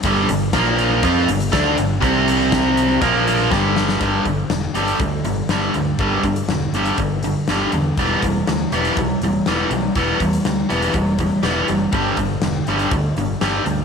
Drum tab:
HH |x-x-x-x-x-xxx-x-|x-x-x-x-x-x-----|x-x-x-xxx-x-x-x-|x-xxx-xxx-x-x-x-|
SD |----o-------o---|----o-------o-oo|----o-------o---|----o-------o---|
BD |o---o---o---o---|o---o---o---o---|o-o-----o-------|o-o-----o-------|

HH |x-x-x-xxx-x-x-x-|x-xxx-xxx-x-x-x-|x-x-x-xxx-x-x-x-|
SD |----o-------o---|----o-------o---|----o-------o---|
BD |o-o-----o-------|o-o-----o-o-----|o-o-----o-------|